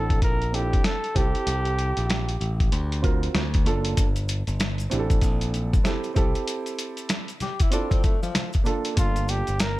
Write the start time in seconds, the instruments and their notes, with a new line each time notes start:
Already playing: picked electric bass A1, grand piano C4 D4 E4 A4, flugelhorn A4
0.10 kick, closed hi-hat
0.22 picked electric bass A#1, flugelhorn A#4, kick, closed hi-hat
0.42 closed hi-hat
0.52 grand piano C4 D4 E4 A4, flugelhorn G4, closed hi-hat
0.73 kick, closed hi-hat
0.84 flugelhorn A4, snare, closed hi-hat
1.04 closed hi-hat
1.15 picked electric bass C2, grand piano C4 E4 G4 A4, flugelhorn G4, kick, closed hi-hat
1.35 closed hi-hat
1.47 picked electric bass C2, closed hi-hat
1.65 closed hi-hat
1.79 closed hi-hat
1.97 picked electric bass A#1, closed hi-hat
2.10 snare, closed hi-hat
2.29 closed hi-hat
2.41 picked electric bass A1, closed hi-hat
2.60 kick, closed hi-hat
2.72 picked electric bass D2, closed hi-hat
2.92 closed hi-hat
3.02 grand piano C4 F4 F#4 A#4, kick, closed hi-hat
3.23 closed hi-hat
3.35 picked electric bass D2, snare, closed hi-hat
3.54 kick, closed hi-hat
3.65 picked electric bass F#1, grand piano A#3 D4 F4 A4, closed hi-hat
3.85 closed hi-hat
3.97 picked electric bass G1, kick, closed hi-hat, maracas
4.16 closed hi-hat, maracas
4.29 closed hi-hat, maracas
4.47 picked electric bass G1, closed hi-hat, maracas
4.60 snare, closed hi-hat, maracas
4.78 closed hi-hat, maracas
4.90 picked electric bass A1, grand piano C4 D4 E4 G4, closed hi-hat, low conga, maracas
4.99 grand piano A4
5.10 kick, closed hi-hat, maracas
5.21 picked electric bass A#1, kick, closed hi-hat, maracas
5.41 closed hi-hat, maracas
5.54 closed hi-hat, high conga, maracas
5.73 kick, closed hi-hat, high conga, maracas
5.84 grand piano C4 E4 G4 A4, snare, closed hi-hat, low conga, maracas
6.04 closed hi-hat, maracas
6.14 picked electric bass C2, grand piano C4 E4 G4 A4, kick, closed hi-hat, low conga, maracas
6.35 closed hi-hat, maracas
6.48 closed hi-hat, maracas
6.66 closed hi-hat, maracas
6.79 closed hi-hat, maracas
6.97 closed hi-hat, maracas
7.09 snare, closed hi-hat, high conga, maracas
7.28 closed hi-hat, maracas
7.40 tenor saxophone G4, snare, closed hi-hat, low conga, maracas
7.60 tenor saxophone E4, kick, closed hi-hat, maracas
7.70 grand piano C4 E4 F4 A4, tenor saxophone D4, closed hi-hat, maracas
7.90 tenor saxophone C4, kick, closed hi-hat, high conga, maracas
8.03 tenor saxophone A3, kick, closed hi-hat, high conga, maracas
8.22 tenor saxophone F3, closed hi-hat, high conga, maracas
8.35 snare, closed hi-hat, low conga, maracas
8.53 kick, closed hi-hat, maracas
8.64 grand piano A#3 D4 F4 A4, closed hi-hat, low conga, maracas
8.85 closed hi-hat, maracas
8.95 picked electric bass G1, grand piano A#3 D4 F4 A4, flugelhorn F4, kick, closed hi-hat, maracas
9.16 closed hi-hat, maracas
9.28 flugelhorn G4, closed hi-hat, maracas
9.47 picked electric bass G1, closed hi-hat, maracas
9.60 flugelhorn A#4, snare, closed hi-hat, maracas